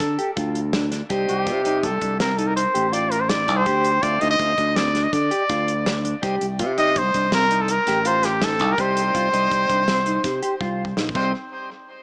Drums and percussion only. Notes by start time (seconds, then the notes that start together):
0.00 kick, snare, closed hi-hat
0.19 closed hi-hat
0.37 kick, closed hi-hat
0.55 closed hi-hat
0.73 snare, closed hi-hat
0.92 snare, closed hi-hat
1.10 kick, closed hi-hat
1.29 closed hi-hat
1.47 kick, snare, closed hi-hat
1.65 closed hi-hat
1.83 kick, closed hi-hat
2.01 kick, closed hi-hat
2.20 snare, closed hi-hat
2.38 closed hi-hat
2.57 closed hi-hat
2.75 closed hi-hat
2.93 closed hi-hat
3.12 closed hi-hat
3.29 snare, closed hi-hat
3.48 kick, closed hi-hat
3.66 kick, closed hi-hat
3.84 closed hi-hat
4.03 kick, closed hi-hat
4.21 closed hi-hat
4.39 kick, closed hi-hat
4.58 kick, closed hi-hat
4.76 snare, closed hi-hat
4.95 snare, closed hi-hat
5.13 kick, closed hi-hat
5.31 closed hi-hat
5.49 kick, snare, closed hi-hat
5.68 closed hi-hat
5.86 snare, closed hi-hat
6.05 closed hi-hat
6.23 kick, closed hi-hat
6.41 closed hi-hat
6.59 kick, closed hi-hat
6.78 closed hi-hat
6.96 kick, closed hi-hat
7.14 kick, closed hi-hat
7.32 snare, closed hi-hat
7.51 closed hi-hat
7.68 closed hi-hat
7.87 snare, closed hi-hat
8.05 closed hi-hat
8.23 snare, closed hi-hat
8.42 snare, closed hi-hat
8.59 kick, closed hi-hat
8.78 kick, closed hi-hat
8.97 closed hi-hat
9.15 kick, closed hi-hat
9.34 closed hi-hat
9.51 kick, closed hi-hat
9.70 kick, closed hi-hat
9.88 snare, closed hi-hat
10.06 closed hi-hat
10.24 kick, snare, closed hi-hat
10.43 closed hi-hat
10.61 kick
10.85 kick
10.97 snare
11.09 kick
11.15 kick, crash